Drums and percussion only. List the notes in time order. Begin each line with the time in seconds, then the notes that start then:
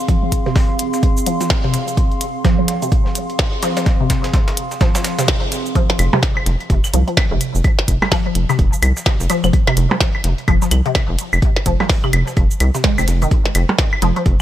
0.08 kick, closed hi-hat
0.32 kick, closed hi-hat, cabasa
0.46 snare
0.56 kick, snare, open hi-hat
0.79 closed hi-hat
0.93 snare, cabasa
1.03 kick, closed hi-hat
1.17 cabasa
1.26 closed hi-hat, cabasa
1.41 snare, cabasa
1.50 kick, snare, closed hi-hat
1.64 snare
1.74 snare, closed hi-hat, cabasa
1.88 closed hi-hat, cabasa
1.97 kick, closed hi-hat
2.11 closed hi-hat
2.21 closed hi-hat, cabasa
2.45 kick, snare, closed hi-hat
2.68 snare, closed hi-hat
2.82 closed hi-hat, cabasa
2.92 kick, closed hi-hat
3.06 snare
3.15 closed hi-hat, cabasa
3.30 closed hi-hat
3.39 kick, snare, closed hi-hat
3.63 snare, closed hi-hat, cabasa
3.77 snare, closed hi-hat, cabasa
3.86 kick, snare, closed hi-hat
4.10 kick, snare, closed hi-hat, cabasa
4.24 snare, closed hi-hat
4.34 kick, snare, closed hi-hat
4.48 snare, closed hi-hat
4.57 closed hi-hat
4.71 snare, cabasa
4.81 kick, snare, closed hi-hat
4.95 snare, closed hi-hat, cabasa
5.04 snare, closed hi-hat, cabasa
5.19 snare, closed hi-hat, cabasa
5.28 kick, snare, closed hi-hat
5.52 snare, closed hi-hat, cabasa
5.66 closed hi-hat, cabasa
5.75 kick, closed hi-hat
5.89 snare, closed hi-hat
5.99 closed hi-hat, cabasa, claves
6.13 percussion blips
6.23 kick, snare, closed hi-hat
6.37 claves
6.46 snare, closed hi-hat
6.60 closed hi-hat
6.70 kick, closed hi-hat
6.84 snare, cabasa, claves
6.93 closed hi-hat, cabasa
7.08 closed hi-hat
7.17 kick, snare, closed hi-hat, claves
7.41 closed hi-hat, cabasa
7.55 cabasa
7.64 kick, closed hi-hat, claves
7.79 snare
7.88 kick, closed hi-hat, cabasa
8.02 snare, percussion blips, claves
8.12 kick, snare, open hi-hat, claves
8.35 closed hi-hat
8.49 snare, cabasa, claves
8.59 kick, closed hi-hat
8.73 cabasa
8.82 closed hi-hat, cabasa, claves
8.97 snare, cabasa
9.06 kick, snare, closed hi-hat
9.20 snare, cabasa
9.30 snare, closed hi-hat, cabasa, claves
9.44 closed hi-hat, cabasa, claves
9.53 kick, closed hi-hat
9.67 snare, closed hi-hat, claves
9.77 closed hi-hat, cabasa
9.91 percussion blips
10.01 kick, snare, closed hi-hat
10.15 claves
10.24 snare, closed hi-hat
10.38 closed hi-hat
10.48 kick, closed hi-hat, claves
10.62 snare, cabasa
10.71 closed hi-hat, cabasa, claves
10.86 closed hi-hat
10.95 kick, snare, closed hi-hat, claves
11.19 closed hi-hat, cabasa
11.33 cabasa, claves
11.42 kick, closed hi-hat
11.56 snare
11.66 kick, closed hi-hat, cabasa
11.80 snare, percussion blips, claves
11.89 kick, snare, open hi-hat
12.04 claves
12.13 closed hi-hat, claves
12.27 snare, cabasa
12.37 kick, closed hi-hat
12.51 cabasa
12.60 closed hi-hat, cabasa, claves
12.75 snare, cabasa
12.84 kick, snare, closed hi-hat
12.98 snare, cabasa, claves
13.08 snare, closed hi-hat, cabasa
13.22 closed hi-hat, cabasa
13.31 kick, closed hi-hat
13.45 snare, closed hi-hat
13.55 closed hi-hat, cabasa, claves
13.69 percussion blips
13.78 kick, snare, closed hi-hat
13.93 claves
14.02 snare, closed hi-hat
14.16 closed hi-hat
14.26 kick, closed hi-hat